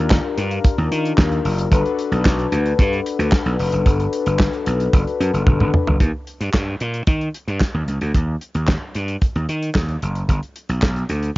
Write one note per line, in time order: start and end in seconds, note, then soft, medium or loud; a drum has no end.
0.00 0.18 D#2 medium
0.00 1.67 D4 medium
0.00 1.68 F4 medium
0.00 1.68 G4 medium
0.00 1.68 A#4 medium
0.10 kick loud
0.10 snare loud
0.10 clap medium
0.38 0.58 G2 medium
0.38 closed hi-hat medium
0.51 closed hi-hat soft
0.64 kick loud
0.64 closed hi-hat medium
0.78 0.88 D#2 loud
0.78 closed hi-hat soft
0.91 1.12 D#3 loud
0.91 closed hi-hat medium
1.05 closed hi-hat soft
1.18 1.38 D#2 medium
1.18 kick loud
1.18 snare loud
1.18 clap medium
1.32 closed hi-hat soft
1.45 1.65 F#1 medium
1.45 open hi-hat medium
1.58 closed hi-hat medium
1.71 1.82 G1 loud
1.71 5.96 D4 medium
1.71 5.96 F#4 medium
1.71 5.96 A4 medium
1.71 5.96 B4 medium
1.71 kick loud
1.71 closed hi-hat loud
1.85 closed hi-hat soft
1.99 closed hi-hat medium
2.12 2.22 B1 medium
2.12 closed hi-hat medium
2.25 2.46 B1 medium
2.25 kick loud
2.25 snare loud
2.25 clap loud
2.39 closed hi-hat soft
2.52 2.72 D2 medium
2.52 closed hi-hat medium
2.66 closed hi-hat soft
2.79 2.99 G2 loud
2.79 kick loud
2.79 closed hi-hat medium
2.93 closed hi-hat soft
3.06 closed hi-hat medium
3.19 3.29 D2 medium
3.19 closed hi-hat medium
3.32 kick loud
3.32 snare loud
3.32 clap medium
3.46 3.56 B1 medium
3.46 closed hi-hat soft
3.59 3.69 F1 medium
3.59 open hi-hat medium
3.72 3.83 F#1 medium
3.72 closed hi-hat medium
3.86 4.06 G1 loud
3.86 kick loud
3.86 closed hi-hat medium
4.00 closed hi-hat soft
4.13 closed hi-hat medium
4.26 4.47 G1 loud
4.26 closed hi-hat medium
4.39 kick loud
4.39 snare loud
4.39 clap loud
4.53 closed hi-hat soft
4.66 4.87 B1 medium
4.66 closed hi-hat medium
4.80 closed hi-hat soft
4.93 5.03 F#1 loud
4.93 kick loud
4.93 closed hi-hat medium
5.07 closed hi-hat soft
5.20 5.30 F#2 medium
5.20 closed hi-hat medium
5.34 5.44 F#1 medium
5.34 closed hi-hat medium
5.47 5.57 G1 loud
5.47 kick loud
5.47 high tom medium
5.60 5.70 G1 medium
5.60 mid tom medium
5.74 mid tom loud
5.87 5.97 F#1 medium
5.87 floor tom loud
6.00 6.11 D#2 loud
6.00 kick loud
6.00 closed hi-hat medium
6.27 closed hi-hat medium
6.41 6.51 G2 medium
6.41 closed hi-hat medium
6.54 6.74 G2 medium
6.54 kick loud
6.54 snare loud
6.54 clap medium
6.80 7.01 A#2 medium
6.80 closed hi-hat medium
6.94 closed hi-hat soft
7.07 7.28 D#3 medium
7.07 kick loud
7.07 closed hi-hat medium
7.21 closed hi-hat soft
7.35 closed hi-hat medium
7.48 7.58 G2 medium
7.48 closed hi-hat soft
7.61 kick loud
7.61 snare loud
7.61 clap medium
7.74 7.85 D#2 medium
7.88 7.98 C#2 medium
7.88 closed hi-hat medium
8.01 8.11 D2 medium
8.01 closed hi-hat medium
8.14 8.35 D#2 loud
8.14 kick loud
8.14 closed hi-hat medium
8.41 closed hi-hat medium
8.55 8.75 D#2 medium
8.55 closed hi-hat medium
8.68 kick loud
8.68 snare loud
8.68 clap medium
8.95 9.15 G2 medium
8.95 closed hi-hat medium
9.08 closed hi-hat soft
9.21 kick loud
9.21 closed hi-hat medium
9.36 9.46 D#2 medium
9.36 closed hi-hat soft
9.49 9.69 D#3 loud
9.49 closed hi-hat medium
9.62 closed hi-hat soft
9.75 9.95 D#2 medium
9.75 kick loud
9.75 snare loud
9.75 clap medium
9.88 closed hi-hat soft
10.02 10.22 F#1 medium
10.02 closed hi-hat medium
10.15 closed hi-hat soft
10.29 10.39 G1 loud
10.29 kick medium
10.29 closed hi-hat medium
10.43 closed hi-hat soft
10.56 closed hi-hat medium
10.69 10.79 B1 medium
10.69 closed hi-hat medium
10.82 11.03 B1 medium
10.82 kick loud
10.82 snare loud
10.82 clap medium
10.96 closed hi-hat soft
11.09 11.30 D2 medium
11.09 closed hi-hat medium
11.23 closed hi-hat soft